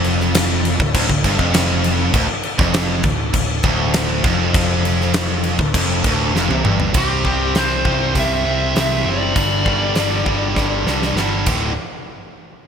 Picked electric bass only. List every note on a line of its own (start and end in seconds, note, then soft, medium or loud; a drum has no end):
0.00 0.75 F1 medium
0.80 0.93 D1 medium
0.94 1.08 D1 medium
1.09 1.23 D1 medium
1.24 1.38 G1 medium
1.39 2.10 F1 medium
2.13 2.28 D1 loud
2.29 muted picked electric bass stroke soft
2.58 3.01 F1 loud
3.03 3.32 D1 medium
3.33 3.62 D1 medium
3.64 4.20 D1 medium
4.24 5.55 F1 loud
5.59 5.73 D1 medium
5.75 6.02 F1 medium
6.04 6.32 D1 medium
6.33 6.48 F1 loud
6.49 6.63 C2 medium
6.64 6.92 G1 loud
6.95 7.23 C2 medium
7.24 7.53 C2 medium
7.56 7.84 C2 medium
7.85 8.14 C2 medium
8.15 8.44 C2 medium
8.46 8.74 C2 medium
8.76 9.04 C2 medium
9.05 9.34 F#1 medium
9.36 9.64 G1 medium
9.66 9.94 G1 medium
9.95 10.24 G1 medium
10.26 10.54 G1 medium
10.56 10.84 G1 medium
10.84 11.13 C2 medium
11.14 11.44 G1 medium
11.47 11.74 D1 medium